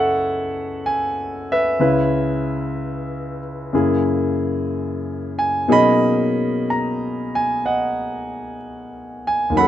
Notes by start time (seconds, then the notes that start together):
Already playing: F#2 C#3 E4 F#4 A4 B4 D#5 E5 F#5
0.86 G#5
1.52 B4 E5
1.80 C#2 C#3 C#4 E4 B4
3.73 F#2 C#3 A#3 E4 G#4
5.39 G#5
5.68 B2 F#3 A#3 C#4 D#4 G#4
5.72 D#5 B5
6.70 A#5
7.35 G#5
7.65 D#5 F#5
9.27 G#5
9.50 D#2 D#3
9.55 F#3 C#4 F#5 B5
9.61 A4